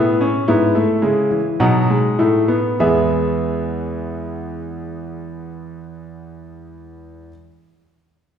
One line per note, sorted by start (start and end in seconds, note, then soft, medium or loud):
0.00 0.28 A2 medium
0.00 0.21 B3 medium
0.00 0.46 G#4 medium
0.00 1.55 E5 medium
0.21 0.47 C#4 medium
0.48 0.82 G#2 medium
0.48 0.75 B3 medium
0.48 1.56 E4 medium
0.75 1.02 A3 medium
1.02 1.38 C#3 medium
1.02 1.30 G#3 medium
1.31 1.59 E3 medium
1.60 1.96 B2 medium
1.60 1.88 F#3 medium
1.60 2.76 D#4 medium
1.60 2.76 F#5 medium
1.90 2.18 G#3 medium
2.19 2.56 A2 medium
2.19 2.48 A3 medium
2.48 2.78 B3 medium
2.80 7.28 E2 medium
2.80 7.32 E3 medium
2.80 7.31 G#3 medium
2.80 7.28 B3 medium
2.80 7.29 G#4 medium
2.80 7.28 E5 medium